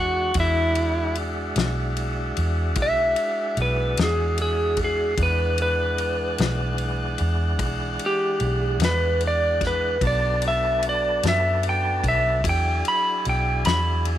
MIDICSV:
0, 0, Header, 1, 5, 480
1, 0, Start_track
1, 0, Tempo, 805369
1, 212, Time_signature, 12, 3, 24, 8
1, 8452, End_track
2, 0, Start_track
2, 0, Title_t, "Electric slide guitar"
2, 0, Program_c, 0, 29
2, 0, Note_on_c, 0, 66, 73
2, 217, Note_off_c, 0, 66, 0
2, 238, Note_on_c, 0, 64, 87
2, 690, Note_off_c, 0, 64, 0
2, 1682, Note_on_c, 0, 76, 86
2, 2131, Note_off_c, 0, 76, 0
2, 2156, Note_on_c, 0, 71, 88
2, 2375, Note_off_c, 0, 71, 0
2, 2402, Note_on_c, 0, 68, 74
2, 2619, Note_off_c, 0, 68, 0
2, 2632, Note_on_c, 0, 68, 81
2, 2853, Note_off_c, 0, 68, 0
2, 2887, Note_on_c, 0, 68, 70
2, 3101, Note_off_c, 0, 68, 0
2, 3115, Note_on_c, 0, 71, 80
2, 3335, Note_off_c, 0, 71, 0
2, 3349, Note_on_c, 0, 71, 86
2, 4275, Note_off_c, 0, 71, 0
2, 4805, Note_on_c, 0, 67, 89
2, 5253, Note_off_c, 0, 67, 0
2, 5273, Note_on_c, 0, 71, 91
2, 5494, Note_off_c, 0, 71, 0
2, 5528, Note_on_c, 0, 74, 89
2, 5742, Note_off_c, 0, 74, 0
2, 5763, Note_on_c, 0, 71, 81
2, 5980, Note_off_c, 0, 71, 0
2, 6002, Note_on_c, 0, 74, 74
2, 6220, Note_off_c, 0, 74, 0
2, 6244, Note_on_c, 0, 76, 84
2, 6461, Note_off_c, 0, 76, 0
2, 6491, Note_on_c, 0, 74, 76
2, 6705, Note_off_c, 0, 74, 0
2, 6726, Note_on_c, 0, 76, 83
2, 6943, Note_off_c, 0, 76, 0
2, 6968, Note_on_c, 0, 79, 84
2, 7184, Note_off_c, 0, 79, 0
2, 7202, Note_on_c, 0, 76, 75
2, 7422, Note_off_c, 0, 76, 0
2, 7446, Note_on_c, 0, 79, 76
2, 7664, Note_off_c, 0, 79, 0
2, 7677, Note_on_c, 0, 83, 81
2, 7900, Note_off_c, 0, 83, 0
2, 7923, Note_on_c, 0, 79, 81
2, 8141, Note_on_c, 0, 83, 70
2, 8143, Note_off_c, 0, 79, 0
2, 8372, Note_off_c, 0, 83, 0
2, 8452, End_track
3, 0, Start_track
3, 0, Title_t, "Tonewheel organ"
3, 0, Program_c, 1, 16
3, 0, Note_on_c, 1, 52, 58
3, 0, Note_on_c, 1, 56, 61
3, 0, Note_on_c, 1, 62, 62
3, 0, Note_on_c, 1, 66, 59
3, 193, Note_off_c, 1, 66, 0
3, 195, Note_off_c, 1, 52, 0
3, 196, Note_off_c, 1, 56, 0
3, 198, Note_off_c, 1, 62, 0
3, 221, Note_on_c, 1, 64, 64
3, 222, Note_on_c, 1, 62, 64
3, 222, Note_on_c, 1, 66, 64
3, 228, Note_on_c, 1, 56, 66
3, 3069, Note_off_c, 1, 62, 0
3, 3069, Note_off_c, 1, 64, 0
3, 3069, Note_off_c, 1, 66, 0
3, 3072, Note_off_c, 1, 56, 0
3, 3089, Note_on_c, 1, 78, 63
3, 3092, Note_on_c, 1, 52, 66
3, 3094, Note_on_c, 1, 62, 68
3, 3096, Note_on_c, 1, 56, 60
3, 5947, Note_off_c, 1, 78, 0
3, 5948, Note_off_c, 1, 52, 0
3, 5949, Note_off_c, 1, 62, 0
3, 5951, Note_off_c, 1, 56, 0
3, 5974, Note_on_c, 1, 59, 66
3, 5978, Note_on_c, 1, 62, 65
3, 5978, Note_on_c, 1, 69, 64
3, 5979, Note_on_c, 1, 54, 65
3, 7402, Note_off_c, 1, 59, 0
3, 7403, Note_off_c, 1, 62, 0
3, 7404, Note_off_c, 1, 54, 0
3, 7404, Note_off_c, 1, 69, 0
3, 7413, Note_on_c, 1, 62, 58
3, 7415, Note_on_c, 1, 64, 55
3, 7419, Note_on_c, 1, 54, 58
3, 7424, Note_on_c, 1, 68, 62
3, 8452, Note_off_c, 1, 54, 0
3, 8452, Note_off_c, 1, 62, 0
3, 8452, Note_off_c, 1, 64, 0
3, 8452, Note_off_c, 1, 68, 0
3, 8452, End_track
4, 0, Start_track
4, 0, Title_t, "Fingered electric bass"
4, 0, Program_c, 2, 33
4, 0, Note_on_c, 2, 40, 94
4, 192, Note_off_c, 2, 40, 0
4, 212, Note_on_c, 2, 40, 78
4, 907, Note_off_c, 2, 40, 0
4, 930, Note_on_c, 2, 35, 74
4, 1386, Note_off_c, 2, 35, 0
4, 1416, Note_on_c, 2, 40, 78
4, 1649, Note_off_c, 2, 40, 0
4, 1649, Note_on_c, 2, 35, 86
4, 1870, Note_off_c, 2, 35, 0
4, 2128, Note_on_c, 2, 35, 76
4, 2349, Note_off_c, 2, 35, 0
4, 2374, Note_on_c, 2, 40, 91
4, 3067, Note_off_c, 2, 40, 0
4, 3089, Note_on_c, 2, 40, 81
4, 3784, Note_off_c, 2, 40, 0
4, 3811, Note_on_c, 2, 35, 79
4, 4266, Note_off_c, 2, 35, 0
4, 4294, Note_on_c, 2, 40, 80
4, 4529, Note_off_c, 2, 40, 0
4, 4529, Note_on_c, 2, 35, 91
4, 4750, Note_off_c, 2, 35, 0
4, 5010, Note_on_c, 2, 35, 83
4, 5231, Note_off_c, 2, 35, 0
4, 5241, Note_on_c, 2, 40, 98
4, 5942, Note_off_c, 2, 40, 0
4, 5971, Note_on_c, 2, 35, 87
4, 6669, Note_off_c, 2, 35, 0
4, 6697, Note_on_c, 2, 42, 85
4, 7152, Note_off_c, 2, 42, 0
4, 7176, Note_on_c, 2, 35, 78
4, 7418, Note_off_c, 2, 35, 0
4, 7418, Note_on_c, 2, 40, 84
4, 7638, Note_off_c, 2, 40, 0
4, 7905, Note_on_c, 2, 35, 79
4, 8122, Note_off_c, 2, 35, 0
4, 8139, Note_on_c, 2, 40, 99
4, 8452, Note_off_c, 2, 40, 0
4, 8452, End_track
5, 0, Start_track
5, 0, Title_t, "Drums"
5, 203, Note_on_c, 9, 51, 73
5, 210, Note_on_c, 9, 36, 91
5, 263, Note_off_c, 9, 51, 0
5, 269, Note_off_c, 9, 36, 0
5, 448, Note_on_c, 9, 51, 54
5, 508, Note_off_c, 9, 51, 0
5, 687, Note_on_c, 9, 51, 51
5, 747, Note_off_c, 9, 51, 0
5, 928, Note_on_c, 9, 51, 67
5, 941, Note_on_c, 9, 38, 94
5, 987, Note_off_c, 9, 51, 0
5, 1000, Note_off_c, 9, 38, 0
5, 1171, Note_on_c, 9, 51, 55
5, 1231, Note_off_c, 9, 51, 0
5, 1410, Note_on_c, 9, 51, 55
5, 1470, Note_off_c, 9, 51, 0
5, 1642, Note_on_c, 9, 51, 73
5, 1647, Note_on_c, 9, 36, 101
5, 1701, Note_off_c, 9, 51, 0
5, 1706, Note_off_c, 9, 36, 0
5, 1884, Note_on_c, 9, 51, 58
5, 1943, Note_off_c, 9, 51, 0
5, 2127, Note_on_c, 9, 51, 56
5, 2187, Note_off_c, 9, 51, 0
5, 2368, Note_on_c, 9, 51, 80
5, 2381, Note_on_c, 9, 38, 103
5, 2427, Note_off_c, 9, 51, 0
5, 2440, Note_off_c, 9, 38, 0
5, 2608, Note_on_c, 9, 51, 63
5, 2667, Note_off_c, 9, 51, 0
5, 2841, Note_on_c, 9, 51, 56
5, 2844, Note_on_c, 9, 36, 66
5, 2900, Note_off_c, 9, 51, 0
5, 2904, Note_off_c, 9, 36, 0
5, 3084, Note_on_c, 9, 51, 74
5, 3085, Note_on_c, 9, 36, 90
5, 3143, Note_off_c, 9, 51, 0
5, 3144, Note_off_c, 9, 36, 0
5, 3324, Note_on_c, 9, 51, 60
5, 3383, Note_off_c, 9, 51, 0
5, 3565, Note_on_c, 9, 51, 56
5, 3624, Note_off_c, 9, 51, 0
5, 3804, Note_on_c, 9, 51, 71
5, 3817, Note_on_c, 9, 38, 98
5, 3863, Note_off_c, 9, 51, 0
5, 3876, Note_off_c, 9, 38, 0
5, 4041, Note_on_c, 9, 51, 50
5, 4100, Note_off_c, 9, 51, 0
5, 4279, Note_on_c, 9, 51, 55
5, 4338, Note_off_c, 9, 51, 0
5, 4524, Note_on_c, 9, 36, 103
5, 4524, Note_on_c, 9, 51, 74
5, 4583, Note_off_c, 9, 36, 0
5, 4584, Note_off_c, 9, 51, 0
5, 4764, Note_on_c, 9, 51, 55
5, 4823, Note_off_c, 9, 51, 0
5, 5005, Note_on_c, 9, 51, 49
5, 5064, Note_off_c, 9, 51, 0
5, 5243, Note_on_c, 9, 51, 74
5, 5256, Note_on_c, 9, 38, 96
5, 5302, Note_off_c, 9, 51, 0
5, 5316, Note_off_c, 9, 38, 0
5, 5486, Note_on_c, 9, 51, 57
5, 5546, Note_off_c, 9, 51, 0
5, 5727, Note_on_c, 9, 51, 55
5, 5728, Note_on_c, 9, 36, 65
5, 5740, Note_on_c, 9, 38, 28
5, 5787, Note_off_c, 9, 36, 0
5, 5787, Note_off_c, 9, 51, 0
5, 5800, Note_off_c, 9, 38, 0
5, 5967, Note_on_c, 9, 51, 72
5, 5968, Note_on_c, 9, 36, 96
5, 6027, Note_off_c, 9, 36, 0
5, 6027, Note_off_c, 9, 51, 0
5, 6208, Note_on_c, 9, 51, 59
5, 6268, Note_off_c, 9, 51, 0
5, 6452, Note_on_c, 9, 51, 55
5, 6512, Note_off_c, 9, 51, 0
5, 6695, Note_on_c, 9, 51, 71
5, 6708, Note_on_c, 9, 38, 95
5, 6754, Note_off_c, 9, 51, 0
5, 6768, Note_off_c, 9, 38, 0
5, 6932, Note_on_c, 9, 51, 59
5, 6992, Note_off_c, 9, 51, 0
5, 7173, Note_on_c, 9, 36, 67
5, 7175, Note_on_c, 9, 51, 58
5, 7233, Note_off_c, 9, 36, 0
5, 7234, Note_off_c, 9, 51, 0
5, 7415, Note_on_c, 9, 36, 102
5, 7418, Note_on_c, 9, 51, 82
5, 7474, Note_off_c, 9, 36, 0
5, 7477, Note_off_c, 9, 51, 0
5, 7657, Note_on_c, 9, 51, 57
5, 7717, Note_off_c, 9, 51, 0
5, 7898, Note_on_c, 9, 51, 52
5, 7958, Note_off_c, 9, 51, 0
5, 8134, Note_on_c, 9, 51, 74
5, 8147, Note_on_c, 9, 38, 101
5, 8194, Note_off_c, 9, 51, 0
5, 8207, Note_off_c, 9, 38, 0
5, 8375, Note_on_c, 9, 51, 58
5, 8435, Note_off_c, 9, 51, 0
5, 8452, End_track
0, 0, End_of_file